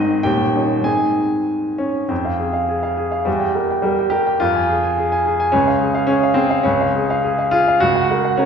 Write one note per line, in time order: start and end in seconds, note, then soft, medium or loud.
0.00 0.28 G#1 medium
0.00 0.28 G#2 medium
0.00 0.22 D#3 medium
0.00 0.23 C4 soft
0.00 0.28 D#4 medium
0.00 0.25 D#5 medium
0.23 0.54 D#1 medium
0.23 0.54 D#2 medium
0.23 0.81 G4 medium
0.23 0.85 G5 medium
0.55 0.80 D#3 soft
0.55 0.83 C#4 soft
0.55 0.83 D#4 soft
0.80 2.04 G#2 soft
0.80 2.04 D#3 soft
0.80 2.05 C4 soft
0.80 2.05 D#4 soft
0.80 1.79 G#5 medium
0.85 1.76 G#4 medium
1.78 2.10 C#4 medium
2.09 3.23 F2 medium
2.09 3.26 C4 medium
2.25 2.48 F5 soft
2.40 2.63 G#4 soft
2.53 2.77 F5 soft
2.68 2.92 G#4 soft
2.83 3.06 F5 soft
2.97 3.21 G#4 soft
3.12 3.26 F5 soft
3.25 4.38 E2 medium
3.25 3.81 G3 medium
3.40 3.64 G5 medium
3.55 3.78 A#4 soft
3.71 3.93 G5 soft
3.82 4.12 G3 medium
3.82 4.07 A#4 soft
3.99 4.22 G5 soft
4.10 4.40 G4 medium
4.10 4.35 A#4 soft
4.27 4.41 G5 medium
4.40 5.49 F2 medium
4.40 5.52 F4 medium
4.55 4.77 G#5 medium
4.69 4.92 G#4 medium
4.83 5.06 G#5 medium
4.98 5.20 G#4 medium
5.12 5.34 G#5 medium
5.26 5.48 G#4 medium
5.40 5.53 G#5 medium
5.52 6.62 C#2 medium
5.52 6.05 C#4 medium
5.67 5.89 F5 medium
5.81 6.02 G#4 medium
5.95 6.17 F5 medium
6.07 6.36 C#4 medium
6.07 6.31 G#4 medium
6.23 6.46 F5 medium
6.34 6.64 C4 medium
6.34 6.59 G#4 medium
6.50 6.65 F5 medium
6.63 7.77 C#2 medium
6.63 7.51 C#4 medium
6.81 7.03 F5 medium
6.96 7.18 G#4 medium
7.10 7.32 F5 medium
7.24 7.47 G#4 medium
7.38 7.61 F5 medium
7.51 7.80 F4 loud
7.51 7.75 G#4 medium
7.68 7.81 F5 medium
7.80 8.45 C#2 medium
7.80 8.38 F#4 medium
7.95 8.18 F#5 medium
8.11 8.33 A#4 medium
8.25 8.45 F#5 medium
8.37 8.45 C#4 medium
8.37 8.45 A#4 medium